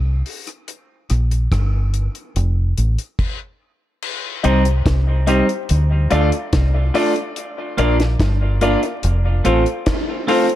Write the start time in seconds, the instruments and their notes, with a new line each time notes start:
Already playing: fingered electric bass C2
0.26 open hi-hat
0.47 closed hi-hat
0.68 closed hi-hat
1.10 fingered electric bass A#1, cross-stick, closed hi-hat
1.31 closed hi-hat
1.52 fingered electric bass G1, kick, cross-stick, closed hi-hat
1.94 closed hi-hat
2.15 closed hi-hat
2.36 fingered electric bass F1, closed hi-hat
2.77 fingered electric bass A1, closed hi-hat
2.98 closed hi-hat
3.19 kick, crash
4.02 crash
4.44 fingered electric bass C2, clean electric guitar G3 C4 D#4, grand piano D#4 G4 C5, closed hi-hat
4.65 closed hi-hat
4.86 fingered electric bass C2, kick, snare, closed hi-hat
5.27 clean electric guitar G3 C4 D#4, grand piano D#4 G4 C5, closed hi-hat
5.49 closed hi-hat
5.69 fingered electric bass D2, closed hi-hat
6.10 fingered electric bass D2, clean electric guitar A3 D4 F4, grand piano F4 A4 D5, closed hi-hat
6.32 closed hi-hat
6.53 fingered electric bass C2, kick, snare, closed hi-hat
6.74 grand piano A4 D5
6.94 clean electric guitar A3 D4 F4, grand piano F4 A4 D5, open hi-hat
7.16 closed hi-hat
7.36 closed hi-hat
7.77 fingered electric bass A#1, clean electric guitar A#3 D4 F4, grand piano F4 A#4 D5, closed hi-hat
8.00 snare, closed hi-hat
8.20 fingered electric bass G1, kick, snare, closed hi-hat
8.61 clean electric guitar A#3 D4 F4, grand piano F4 A#4 D5, closed hi-hat
8.83 grand piano A#4 D5, closed hi-hat
9.03 fingered electric bass F1, closed hi-hat
9.44 fingered electric bass A1, clean electric guitar A3 C4 F4, grand piano F4 A4 C5, closed hi-hat
9.66 closed hi-hat
9.86 kick, snare, closed hi-hat
10.27 clean electric guitar A3 C4 F4, grand piano F4 A4 C5, open hi-hat
10.49 closed hi-hat